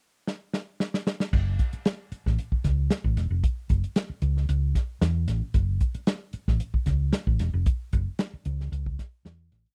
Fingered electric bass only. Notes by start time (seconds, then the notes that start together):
1.33 F#1
1.73 muted fingered electric bass stroke
2.12 muted fingered electric bass stroke
2.26 A1
2.52 muted fingered electric bass stroke
2.65 C#2
3.04 A1
3.17 E1
3.30 F1
3.70 F#1
4.10 muted fingered electric bass stroke
4.22 C#2
4.49 C#2
5.01 E2
5.28 A1
5.54 F#1
5.95 muted fingered electric bass stroke
6.34 muted fingered electric bass stroke
6.48 A1
6.74 muted fingered electric bass stroke
6.87 C#2
7.27 A1
7.40 E1
7.54 F1
7.93 F#1
8.33 muted fingered electric bass stroke
8.46 C#2
8.72 C#2
9.25 E2
9.52 A1